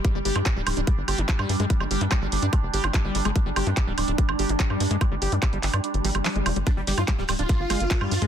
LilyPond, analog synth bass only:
\new Staff \with { instrumentName = "Analog synth bass" } { \clef bass \time 4/4 \tempo 4 = 145 r16 g,,16 g,,16 g,16 r16 d,,16 d,,16 d,,16 r16 g,,16 g,,16 g,,16 r16 g,16 g,16 g,16 | r16 g,,16 g,,16 g,16 r16 g,,16 g,,16 g,16 r16 f,,16 g,,16 g,,16 r16 g,,16 g,,16 g,,16 | r16 g,,16 g,,16 g,16 r16 d,,16 d,,16 d,,16 r16 g,,16 g,,16 g,,16 r16 g,16 g,16 g,16 | r16 g,,16 g,,16 g,16 r16 g,,16 g,,16 g,16 r16 g,,16 aes,,16 g,,16 r16 g,,16 f,,16 g,,16 |
r16 g,,16 g,,16 g,16 r16 d,,16 d,,16 d,,16 r16 g,,16 g,,16 g,,16 r16 g,16 g,16 g,16 | }